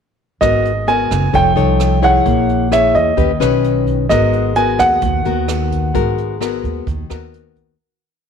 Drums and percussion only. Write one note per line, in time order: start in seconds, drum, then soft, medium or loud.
0.42 kick soft
0.42 cross-stick soft
0.42 closed hi-hat soft
0.65 closed hi-hat soft
0.88 closed hi-hat soft
1.11 kick soft
1.11 cross-stick medium
1.11 closed hi-hat soft
1.34 kick medium
1.34 closed hi-hat soft
1.57 closed hi-hat soft
1.80 cross-stick medium
1.80 closed hi-hat soft
2.03 kick soft
2.03 closed hi-hat soft
2.26 kick soft
2.26 closed hi-hat soft
2.49 closed hi-hat soft
2.72 cross-stick medium
2.72 closed hi-hat soft
2.95 kick soft
2.95 closed hi-hat soft
3.18 kick medium
3.18 closed hi-hat soft
3.41 cross-stick medium
3.41 closed hi-hat soft
3.64 closed hi-hat soft
3.87 kick soft
3.87 closed hi-hat soft
4.10 kick soft
4.10 cross-stick soft
4.10 closed hi-hat soft
4.33 closed hi-hat soft
4.55 closed hi-hat soft
4.79 kick soft
4.79 cross-stick medium
4.79 closed hi-hat soft
5.02 kick medium
5.02 closed hi-hat soft
5.25 closed hi-hat soft
5.48 cross-stick medium
5.48 closed hi-hat soft
5.72 kick soft
5.72 closed hi-hat soft
5.95 kick medium
5.95 closed hi-hat soft
6.18 closed hi-hat soft
6.41 cross-stick medium
6.41 closed hi-hat soft
6.64 kick soft
6.64 closed hi-hat soft
6.87 kick medium
6.87 closed hi-hat soft
7.10 cross-stick medium
7.10 closed hi-hat soft
7.34 closed hi-hat soft
7.56 kick soft
7.56 closed hi-hat soft